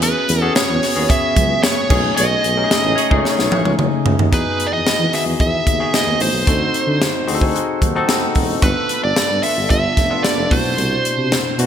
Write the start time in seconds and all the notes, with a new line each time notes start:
Already playing: E2 B3 C#4 F#4 G#4
0.02 B4, closed hi-hat, muted conga
0.28 E2, closed hi-hat, muted conga
0.41 B3 C#4 F#4 G#4
0.55 C#5, snare, closed hi-hat, high conga
0.70 E2
0.82 snare, open hi-hat, muted conga
0.95 D#2 B3 C#4 F#4 G#4
1.10 E5, kick, closed hi-hat
1.36 C#2, kick, closed hi-hat, muted conga, low conga
1.63 C#5, snare, closed hi-hat, high conga
1.89 B1 A3 C#4 D4 G#4, kick, crash, high conga
1.97 D#4
2.04 high conga
2.16 B1 A3 G#4 C#5 D#5, closed hi-hat, muted conga
2.44 B1, closed hi-hat, muted conga
2.56 A3 C#4 D#4 G4
2.64 G#4
2.71 snare, closed hi-hat, high conga
2.84 A1
2.96 A3 G#4 C#5, closed hi-hat
3.10 C#2 A3 C#4 D#4 G#4, kick
3.21 C#5
3.25 snare
3.38 B1, snare
3.51 A1, high tom, muted conga
3.65 C#2, high tom
3.79 F#1, mid tom, high conga
4.05 C#2, floor tom, high conga
4.19 D#2, floor tom, high conga
4.31 E2 B3 D#4 F#4 G#4 B4, kick, closed hi-hat, muted conga
4.60 closed hi-hat, muted conga
4.67 D5
4.72 E2 D#5
4.85 E3, snare, closed hi-hat, high conga
4.99 E3
5.12 D#3 B3 F#4 G#4 E5, snare, open hi-hat
5.25 E2
5.40 E2 E5, kick, closed hi-hat
5.67 D#2, kick, closed hi-hat, muted conga
5.80 B3 D#4 F#4 G#4
5.93 D#5, snare, closed hi-hat, high conga
6.06 D#2
6.19 A1 C5, open hi-hat, high conga
6.33 B1
6.46 D2 C4 D#4 F#4 A4, kick, closed hi-hat, muted conga
6.74 closed hi-hat, muted conga
6.87 D3
7.01 snare, closed hi-hat, high conga
7.27 D2 C4 D#4 F#4 G#4 C6, open hi-hat, muted conga
7.35 A4
7.41 G#5, kick
7.54 F#5, closed hi-hat
7.81 D#2, kick, closed hi-hat, muted conga, low conga
7.95 C4 D#4 F#4 A4
8.09 D#5, snare, closed hi-hat, high conga
8.35 E1, kick, open hi-hat, high conga
8.62 G1 B3 D4 F4 A4 B4, kick, closed hi-hat, muted conga
8.89 closed hi-hat, muted conga
9.03 G1 D5
9.16 G2, snare, closed hi-hat, high conga
9.30 G2
9.43 B3 D4 F4 A4 E5, open hi-hat, muted conga
9.56 G1
9.70 G1 E5, kick, closed hi-hat
9.97 F1, kick, snare, closed hi-hat, muted conga
10.10 B3 D4 F4 A4
10.24 D5, snare, closed hi-hat, high conga
10.37 F1
10.50 C2 B2 D4 E4 F#4 C5, kick, open hi-hat, high conga
10.64 B1
10.77 C2, closed hi-hat, muted conga
11.04 closed hi-hat, muted conga
11.17 C3
11.32 snare, closed hi-hat, high conga
11.58 B2 D4 E4 F#4, closed hi-hat, muted conga